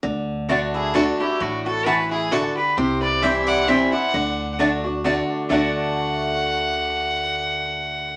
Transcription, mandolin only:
X:1
M:3/4
L:1/8
Q:"Swing" 1/4=132
K:Dmix
V:1 name="Mandolin"
z2 [A,Fda] z [A,Fda] z | z2 [A,Fda] z [A,Fda] z | z2 [CEcg] z [CEcg] z | z2 [A,Fda] z [A,Fda] z |
[A,Fda]6- | [A,Fda]6 |]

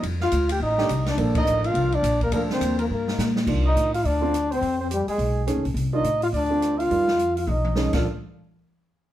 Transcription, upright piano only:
X:1
M:4/4
L:1/8
Q:"Swing" 1/4=210
K:Bb
V:1 name="Upright piano"
z4 z [E,A,DG] z2 | [F,B,DA]4- [F,B,DA] z3 | [F,B,DA]4 z4 | [E,B,DF]3 z2 [D,A,CF] z2 |
z6 [^D,A,^C^G] z | z [E,B,DF] z3 [D,A,CF]3 | [E,G,B,F] z4 z [^D,A,^C^G] [F,B,=DA] | z8 |]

